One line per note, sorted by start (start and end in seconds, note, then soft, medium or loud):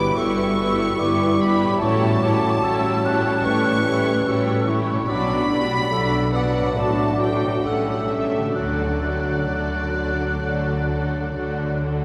0.00 1.76 G2 soft
0.00 0.16 E3 soft
0.00 1.62 G3 medium
0.00 0.16 B3 soft
0.00 0.17 E4 soft
0.00 1.62 E4 medium
0.00 1.67 E4 soft
0.00 0.99 F#4 soft
0.00 0.16 G4 soft
0.00 1.71 G4 soft
0.00 0.16 B4 soft
0.00 1.83 B4 soft
0.00 0.17 B5 soft
0.00 0.17 D6 medium
0.16 0.89 G1 medium
0.16 0.89 G2 soft
0.16 1.01 A3 soft
0.16 0.57 B3 soft
0.16 0.57 E4 soft
0.16 0.58 G4 soft
0.16 0.57 B4 soft
0.16 1.41 C#6 medium
0.16 1.01 E6 medium
0.58 0.99 B3 soft
0.58 0.98 E4 soft
0.58 0.99 G4 soft
0.58 0.98 B4 soft
0.98 1.72 G1 soft
0.98 1.71 G2 medium
0.98 1.81 G3 medium
0.98 1.39 B3 soft
0.98 1.40 E4 soft
0.98 1.80 E4 medium
0.98 1.40 G4 soft
0.98 1.40 B4 soft
0.98 1.83 D6 medium
1.41 1.81 B3 soft
1.41 1.80 E4 soft
1.41 1.81 G4 soft
1.41 1.81 B4 soft
1.41 1.82 B5 medium
1.64 5.03 A2 soft
1.68 5.05 E4 soft
1.73 5.07 G4 soft
1.77 2.53 A1 medium
1.77 2.53 A2 medium
1.77 5.03 G3 medium
1.77 2.21 A3 medium
1.77 5.04 C#4 medium
1.77 5.10 C#5 soft
1.77 3.42 A5 medium
1.81 3.47 F#3 medium
1.81 2.62 C#4 soft
1.81 2.21 E4 medium
1.81 2.22 G4 medium
1.81 2.22 C#5 soft
1.81 2.23 C#6 medium
2.22 2.63 A3 soft
2.22 2.63 E4 soft
2.22 2.62 G4 soft
2.22 2.62 C#5 soft
2.22 2.65 D6 medium
2.62 3.35 A1 medium
2.62 3.35 A2 medium
2.62 3.04 A3 soft
2.62 3.47 C#4 soft
2.62 3.04 E4 soft
2.62 3.03 G4 soft
2.62 3.03 C#5 soft
2.62 3.06 E6 medium
3.04 3.44 A3 soft
3.04 3.44 E4 soft
3.04 3.44 G4 soft
3.04 3.44 C#5 soft
3.04 4.26 F#6 medium
3.44 4.17 A1 medium
3.44 4.17 A2 medium
3.44 4.82 E3 medium
3.44 3.85 A3 soft
3.44 3.85 E4 soft
3.44 3.87 E4 medium
3.44 3.85 G4 soft
3.44 3.86 C#5 soft
3.44 4.67 C#6 medium
3.85 4.26 A3 soft
3.85 4.26 E4 soft
3.85 4.26 G4 soft
3.85 4.26 C#5 soft
4.26 4.98 A1 medium
4.26 4.99 A2 medium
4.26 4.67 A3 soft
4.26 4.67 E4 soft
4.26 4.67 F#4 soft
4.26 4.67 G4 soft
4.26 4.67 C#5 soft
4.26 4.69 E6 soft
4.68 5.08 A3 soft
4.68 5.10 E4 soft
4.68 5.08 E4 soft
4.68 5.09 G4 soft
4.68 5.09 C#5 soft
4.68 5.11 C#6 medium
4.91 6.71 B2 soft
4.95 6.63 D4 soft
5.00 6.68 F#4 soft
5.04 5.81 B2 medium
5.04 7.60 F#3 medium
5.04 5.51 F#3 soft
5.04 7.60 D4 medium
5.04 7.66 D5 soft
5.04 6.29 B5 medium
5.08 5.82 B1 soft
5.08 5.50 F#3 medium
5.08 5.64 D4 soft
5.08 5.50 D4 soft
5.08 5.50 F#4 soft
5.08 5.50 D5 soft
5.08 5.65 D6 medium
5.50 5.92 F#3 soft
5.50 5.90 G3 soft
5.50 5.92 D4 soft
5.50 5.91 F#4 soft
5.50 5.92 D5 soft
5.91 6.67 B1 soft
5.91 6.67 B2 soft
5.91 6.34 F#3 soft
5.91 6.35 A3 soft
5.91 6.78 D4 soft
5.91 6.34 D4 soft
5.91 6.33 F#4 soft
5.91 6.34 D5 soft
5.91 6.37 E6 medium
6.33 6.77 F#3 soft
6.33 6.78 B3 soft
6.33 6.77 D4 soft
6.33 6.77 F#4 soft
6.33 6.77 D5 soft
6.33 6.76 F#5 medium
6.33 7.65 D6 medium
6.60 7.46 A2 soft
6.65 7.62 D4 soft
6.69 7.64 F#4 soft
6.73 7.54 A2 soft
6.73 7.65 F#3 soft
6.73 7.67 F#4 soft
6.73 7.59 A4 soft
6.78 7.55 A1 soft
6.78 7.20 A3 soft
6.78 7.21 D4 soft
6.78 7.21 F#4 soft
6.78 7.21 A4 soft
6.78 7.21 A5 medium
7.22 7.63 A3 soft
7.22 7.65 D4 soft
7.22 7.65 F#4 soft
7.22 7.65 A4 soft
7.22 7.64 G5 medium
7.47 8.50 A2 soft
7.52 8.52 C#4 soft
7.56 8.54 G4 soft
7.61 8.54 A3 soft
7.61 8.08 A3 soft
7.61 8.50 A4 soft
7.65 8.44 A1 soft
7.65 8.44 A2 soft
7.65 8.39 G3 soft
7.65 8.08 C#4 soft
7.65 8.55 C#4 soft
7.65 8.39 C#4 soft
7.65 8.09 G4 soft
7.65 8.10 A4 soft
7.65 8.10 F#5 medium
7.65 8.57 E6 soft
8.08 8.54 A3 soft
8.08 8.54 C#4 soft
8.08 8.55 G4 soft
8.08 8.55 A4 soft
8.08 8.54 E5 medium
8.38 12.05 D3 soft
8.42 12.05 D4 soft
8.47 12.05 F#4 soft
8.51 9.38 D2 soft
8.51 9.39 D3 soft
8.51 12.05 A4 soft
8.55 11.89 F#3 soft
8.55 9.02 A3 soft
8.55 9.01 D4 soft
8.55 11.89 D4 soft
8.55 9.03 F#4 soft
8.55 9.03 A4 soft
8.55 11.77 D5 medium
8.55 11.81 F#6 soft
9.04 9.49 A3 soft
9.04 9.49 D4 soft
9.04 9.50 F#4 soft
9.04 9.50 A4 soft
9.50 10.31 D2 soft
9.50 10.31 D3 soft
9.50 9.95 A3 soft
9.50 9.95 D4 soft
9.50 9.96 F#4 soft
9.50 9.97 A4 soft
9.97 10.41 A3 soft
9.97 10.41 D4 soft
9.97 10.42 F#4 soft
9.97 10.42 A4 soft
10.42 11.23 D2 soft
10.42 11.23 D3 soft
10.42 10.87 A3 soft
10.42 10.87 D4 soft
10.42 10.87 F#4 soft
10.42 10.88 A4 soft
10.88 11.33 A3 soft
10.88 11.33 D4 soft
10.88 11.34 F#4 soft
10.88 11.33 A4 soft
11.34 12.05 D2 soft
11.34 12.05 D3 soft
11.34 11.80 A3 soft
11.34 11.80 D4 soft
11.34 11.81 F#4 soft
11.34 11.81 A4 soft
11.82 12.05 A3 soft
11.82 12.05 D4 soft
11.82 12.05 F#4 soft
11.82 12.05 A4 soft